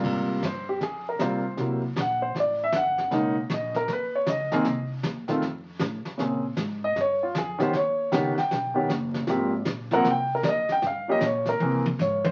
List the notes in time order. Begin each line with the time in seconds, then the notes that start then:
Already playing: C3 G3 A#3 F4
0.04 G#2, brush sweep, kick, snare, crash
0.42 G2 C5, kick, snare, hi-hat pedal
0.69 G4
0.81 F2 G#4, brush sweep, kick, snare
1.09 A#4
1.19 D#2 C3 G3 A#3 F4 C5, kick, snare, hi-hat pedal
1.57 C2 C3 F#3 A#3 E4, brush sweep, kick, snare
1.96 A#1, kick, snare, hi-hat pedal
2.00 F#5
2.22 C5
2.35 A1, brush sweep, kick, snare
2.40 D5
2.64 E5
2.72 G1 F#5, kick, snare, hi-hat pedal
2.98 snare
3.11 B1 C#3 G#3 A#3 D#4, brush sweep, kick, snare
3.50 A#1, kick, snare, hi-hat pedal
3.54 D#5
3.74 A#4, snare
3.88 D#2, brush sweep, kick, snare
3.93 B4
4.15 C#5
4.26 C#2 D#5, kick, snare, hi-hat pedal
4.52 D#3 A#3 C4 G#4, snare
4.64 C2, brush sweep, kick, snare
5.03 D#2, kick, snare, hi-hat pedal
5.28 D#3 A3 C4 F4, muted upright bass stroke, snare
5.42 F2, brush sweep, kick, snare
5.79 A2, kick, snare, hi-hat pedal
6.05 snare
6.18 A#2 C#3 A#3 C4 G#4, brush sweep, kick, snare
6.56 G#2, kick, snare, hi-hat pedal
6.84 D#5
6.95 G2, brush sweep, kick, snare
7.01 C#5
7.23 F4
7.34 F2 G#4, kick, snare, hi-hat pedal
7.58 D#3 B3 C#4 G4, snare
7.63 C5
7.73 D#2 C#5, brush sweep, kick, snare
8.12 C#2 D#3 B3 C#4 G4, kick, snare, hi-hat pedal
8.35 F#5 G5, snare
8.51 B1, brush sweep, kick, snare
8.74 D#3 B3 C#4 G4
8.89 F#1, kick, snare, hi-hat pedal
9.14 snare
9.27 G#1 F3 A#3 C4 G4, brush sweep, kick, snare
9.65 A#1, kick, snare, hi-hat pedal
9.91 F3 A#3 C4 A#4 F#5, snare
10.04 C2, brush sweep, kick, snare
10.11 G5
10.35 A#4
10.43 D#2 D5, kick, snare, hi-hat pedal
10.49 D#5
10.69 G5, muted upright bass stroke, snare
10.82 G2, brush sweep, kick, snare
10.87 F5
11.08 F3 A#3 C#4 G4 D#5
11.20 A#2, kick, snare, hi-hat pedal
11.25 C#5
11.45 A#4, snare
11.60 C3 E3 A#3 C4 G#4, high tom
11.86 high tom
11.99 G#2 C#5, hi-hat pedal, high tom
12.24 C5, high tom